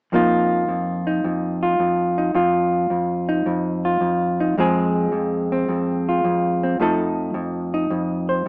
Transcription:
0.12 0.68 F2 medium
0.12 3.32 F3 medium
0.12 3.64 A#3 medium
0.12 1.06 D#4 medium
0.12 1.62 F4 medium
0.68 1.24 F2 medium
1.07 2.18 D#4 soft
1.24 1.79 F2 medium
1.63 2.35 F4 soft
1.79 2.34 F2 medium
2.18 2.37 D#4 soft
2.34 2.90 F2 medium
2.34 3.85 F4 medium
2.90 3.46 F2 medium
3.29 4.40 D#4 medium
3.46 4.00 F2 medium
3.85 4.60 F4 soft
4.01 4.57 F2 medium
4.40 4.59 D#4 medium
4.58 5.12 F2 medium
4.58 6.80 F3 medium
4.58 6.80 G#3 medium
4.58 5.52 C4 medium
4.58 6.08 G#4 medium
5.12 5.68 F2 medium
5.52 6.63 C4 medium
5.69 6.23 F2 medium
6.09 6.82 F4 soft
6.24 6.78 F2 medium
6.63 6.81 C4 soft
6.80 7.33 F2 medium
6.80 8.48 F3 medium
6.80 8.48 A3 medium
6.80 7.73 D#4 medium
6.80 8.29 A4 medium
7.34 7.89 F2 medium
7.74 8.48 D#4 medium
7.90 8.45 F2 medium
8.29 8.48 C5 medium

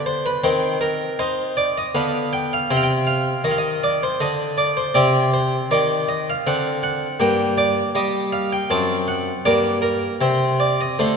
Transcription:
0.00 0.28 D3 soft
0.00 0.39 B3 soft
0.06 0.25 C5 loud
0.26 0.44 B4 medium
0.44 1.04 D#3 medium
0.44 1.91 C4 soft
0.44 0.76 C5 medium
0.81 1.19 A#4 medium
1.19 1.79 D#4 medium
1.19 1.57 C5 medium
1.57 1.76 D5 loud
1.78 1.96 D#5 medium
1.95 2.56 D3 medium
1.95 2.67 B3 soft
1.95 2.33 F5 medium
2.33 2.52 G5 loud
2.53 2.71 F5 loud
2.70 3.31 C3 medium
2.70 4.92 C4 soft
2.70 2.78 G5 loud
2.77 2.84 F5 medium
2.83 3.04 G5 medium
3.07 3.40 F5 loud
3.44 4.05 D#3 medium
3.44 3.52 D#5 medium
3.51 3.59 F5 medium
3.58 3.83 D#5 loud
3.84 4.03 D5 loud
4.03 4.22 C5 medium
4.20 4.81 D3 medium
4.20 4.58 D#5 loud
4.58 4.77 D5 loud
4.77 4.96 C5 loud
4.94 5.56 C3 medium
4.94 6.41 C4 medium
4.94 5.27 D5 loud
5.34 5.65 C5 medium
5.71 6.31 D#3 medium
5.71 6.09 D5 loud
6.09 6.27 D#5 loud
6.30 6.47 F5 loud
6.47 7.05 D3 medium
6.47 7.16 C4 soft
6.47 6.82 F#5 medium
6.83 7.20 F#5 loud
7.20 7.79 G2 medium
7.20 8.65 A#3 medium
7.20 7.57 G5 loud
7.58 7.89 D5 loud
7.95 8.55 G3 medium
7.95 8.32 D#5 loud
8.32 8.51 F5 loud
8.52 8.70 G5 medium
8.70 9.30 F#2 medium
8.70 9.41 C4 medium
8.70 9.08 A5 medium
9.08 9.45 F#5 loud
9.45 10.05 G2 medium
9.45 10.16 A#3 soft
9.45 9.77 D5 loud
9.82 10.14 A#4 medium
10.21 10.83 C3 medium
10.21 10.95 C4 soft
10.21 10.59 C5 medium
10.60 10.79 D5 loud
10.81 10.99 D#5 medium
10.99 11.17 D3 medium
10.99 11.17 A3 soft
10.99 11.17 C5 medium

